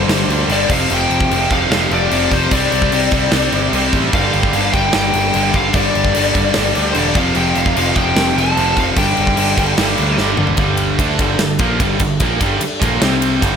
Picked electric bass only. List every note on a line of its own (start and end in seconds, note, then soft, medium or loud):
0.08 0.24 G1 loud
0.28 0.44 D2 medium
0.49 0.64 G1 loud
0.70 0.85 F1 medium
0.90 1.06 F1 loud
1.10 1.26 F1 loud
1.31 1.46 F1 loud
1.51 1.66 F1 loud
1.71 1.86 F1 medium
1.91 2.07 F1 loud
2.11 2.27 F1 medium
2.31 2.47 F1 medium
2.51 2.67 C2 loud
2.72 2.88 C2 medium
2.92 3.08 C2 medium
3.11 3.27 C2 medium
3.32 3.48 C2 medium
3.52 3.68 G1 medium
3.73 3.88 C2 loud
3.93 4.09 A1 medium
4.13 4.29 G1 medium
4.34 4.49 G1 medium
4.53 4.69 G1 medium
4.74 4.89 G1 medium
4.94 5.10 G1 loud
5.14 5.30 G1 loud
5.35 5.50 G1 loud
5.54 5.70 G1 loud
5.74 5.90 G1 loud
5.96 6.11 G1 medium
6.15 6.31 G1 medium
6.35 6.51 G1 medium
6.57 6.72 G1 medium
6.77 6.92 D2 medium
6.96 7.12 E1 loud
7.15 7.31 F1 medium
7.36 7.51 F1 medium
7.56 7.72 F1 medium
7.76 7.92 F1 medium
7.96 8.12 F1 medium
8.16 8.32 F1 medium
8.36 8.52 F1 loud
8.57 8.73 F1 loud
8.77 8.93 F1 loud
8.97 9.13 G1 medium
9.18 9.34 G1 medium
9.38 9.53 G1 medium
9.57 9.73 G1 medium
9.78 9.94 G1 loud
9.99 10.15 D2 loud
10.18 10.34 G1 loud
10.39 10.54 G1 loud
10.58 10.97 G1 medium
10.99 11.18 D2 loud
11.20 11.38 G1 loud
11.38 11.58 G1 medium
11.59 11.79 A#1 loud
11.80 11.99 G1 medium
12.00 12.19 G1 medium
12.20 12.39 A#1 medium
12.41 12.60 G1 loud
12.82 13.00 A#1 medium
13.01 13.39 C2 loud
13.42 13.56 G1 medium